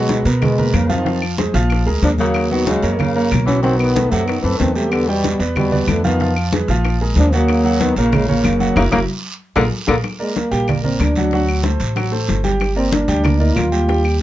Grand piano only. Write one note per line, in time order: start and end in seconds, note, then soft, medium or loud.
0.00 0.20 F#3 medium
0.00 0.21 F#4 medium
0.00 0.21 F#5 medium
0.26 0.52 B3 medium
0.26 0.53 A#4 medium
0.26 0.53 B4 medium
0.58 0.84 A#2 medium
0.58 0.85 A#4 medium
0.58 0.85 B4 medium
0.89 1.03 F3 medium
0.89 1.03 F4 medium
0.89 1.03 F5 medium
1.05 1.32 F3 medium
1.05 1.32 F4 medium
1.05 1.32 F5 medium
1.38 1.52 G#3 medium
1.38 1.52 G#4 medium
1.38 1.52 C5 medium
1.54 1.81 F3 medium
1.54 1.81 F4 medium
1.54 1.81 F5 medium
1.86 2.13 G#3 medium
1.86 2.13 G#4 medium
1.86 2.13 A#4 medium
2.19 2.46 F#3 medium
2.19 2.46 F#4 medium
2.19 2.46 F#5 medium
2.51 2.78 F#3 medium
2.51 2.78 F#4 medium
2.51 2.78 F#5 medium
2.83 3.09 A#3 medium
2.83 3.10 A#4 medium
2.83 3.10 C#5 medium
3.16 3.42 A#3 medium
3.16 3.42 A#4 medium
3.16 3.42 C#5 medium
3.47 3.60 F#3 medium
3.47 3.60 F#4 medium
3.47 3.60 F#5 medium
3.64 3.90 F#3 medium
3.64 3.90 F#4 medium
3.64 3.90 F#5 medium
3.96 4.09 A3 medium
3.96 4.10 A4 medium
3.96 4.10 B4 medium
4.12 4.38 F#3 medium
4.12 4.38 F#4 medium
4.12 4.39 F#5 medium
4.44 4.71 A3 medium
4.44 4.71 A4 medium
4.44 4.71 B4 medium
4.75 5.02 G3 medium
4.75 5.02 G4 medium
4.75 5.02 G5 medium
5.08 5.34 G3 medium
5.08 5.35 G4 medium
5.08 5.35 G5 medium
5.40 5.66 B3 medium
5.40 5.66 B4 medium
5.40 5.66 D5 medium
5.71 5.98 B3 medium
5.71 5.98 B4 medium
5.71 5.99 D5 medium
6.04 6.18 F3 medium
6.04 6.18 F4 medium
6.04 6.18 F5 medium
6.21 6.47 F3 medium
6.21 6.47 F4 medium
6.21 6.47 F5 medium
6.53 6.66 G#3 medium
6.53 6.66 G#4 medium
6.53 6.66 B4 medium
6.69 6.95 F3 medium
6.69 6.95 F4 medium
6.69 6.96 F5 medium
7.01 7.27 G#3 medium
7.01 7.27 G#4 medium
7.01 7.27 A#4 medium
7.33 7.59 F#3 medium
7.33 7.59 F#4 medium
7.33 7.59 F#5 medium
7.64 7.91 F#3 medium
7.64 7.91 F#4 medium
7.64 7.91 F#5 medium
7.98 8.23 A#3 medium
7.98 8.24 A#4 medium
7.98 8.23 C#5 medium
8.28 8.55 A#3 medium
8.28 8.55 A#4 medium
8.28 8.55 C#5 medium
8.60 8.73 F#3 medium
8.60 8.74 F#4 medium
8.60 8.73 F#5 medium
8.77 8.87 E4 loud
8.77 8.87 F#4 loud
8.77 8.87 A#4 loud
8.92 9.02 E4 loud
8.92 9.03 F#4 loud
8.92 9.02 A#4 medium
9.56 9.66 F4 loud
9.56 9.66 G#4 medium
9.56 9.66 A#4 loud
9.87 9.98 F4 medium
9.87 9.98 G#4 medium
9.87 9.98 A#4 medium
10.19 10.46 A#3 medium
10.19 10.46 A#4 medium
10.19 10.46 D5 medium
10.51 10.65 G3 medium
10.51 10.65 G4 medium
10.51 10.65 G5 medium
10.68 10.81 A#3 medium
10.68 10.81 A#4 medium
10.68 10.82 D5 medium
10.84 11.10 A#3 medium
10.84 11.11 A#4 medium
10.84 11.11 D5 medium
11.17 11.30 F#3 medium
11.17 11.30 F#4 medium
11.17 11.30 F#5 medium
11.33 11.59 F#3 medium
11.33 11.60 F#4 medium
11.33 11.60 F#5 medium
11.65 11.91 A3 medium
11.65 11.92 A4 medium
11.65 11.91 C5 medium
11.96 12.09 F#3 medium
11.96 12.10 F#4 medium
11.96 12.10 F#5 medium
12.12 12.38 A3 medium
12.12 12.38 A4 medium
12.12 12.39 C5 medium
12.44 12.70 G3 medium
12.44 12.71 G4 medium
12.44 12.71 G5 medium
12.76 13.02 A#3 medium
12.76 13.03 A#4 medium
12.76 13.03 D5 medium
13.08 13.21 G3 loud
13.08 13.22 G4 medium
13.08 13.22 G5 medium
13.23 13.37 A#3 medium
13.23 13.37 A#4 medium
13.23 13.37 D5 medium
13.40 13.67 A#3 medium
13.40 13.67 A#4 medium
13.40 13.67 D5 medium
13.71 13.85 G3 medium
13.71 13.86 G4 medium
13.71 13.86 G5 medium
13.88 14.15 G3 medium
13.88 14.15 G4 medium
13.88 14.15 G5 medium